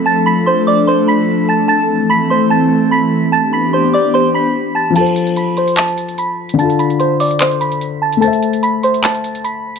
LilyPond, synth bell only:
\new Staff \with { instrumentName = "Synth bell" } { \time 4/4 \key f \lydian \tempo 4 = 147 <a'' a'''>8 <b'' b'''>8 <c'' c'''>8 <d'' d'''>8 <c'' c'''>8 <b'' b'''>4 <a'' a'''>8 | <a'' a'''>4 <b'' b'''>8 <c'' c'''>8 <a'' a'''>4 <b'' b'''>4 | <a'' a'''>8 <b'' b'''>8 <c'' c'''>8 <d'' d'''>8 <c'' c'''>8 <b'' b'''>4 <a'' a'''>8 | <a'' a'''>4 <b'' b'''>8 <c'' c'''>8 <a'' a'''>4 <b'' b'''>4 |
<a'' a'''>8 <b'' b'''>8 <c'' c'''>8 <d'' d'''>8 <c'' c'''>8 <b'' b'''>4 <a'' a'''>8 | <a'' a'''>4 <b'' b'''>8 <c'' c'''>8 <a'' a'''>4 <b'' b'''>4 | }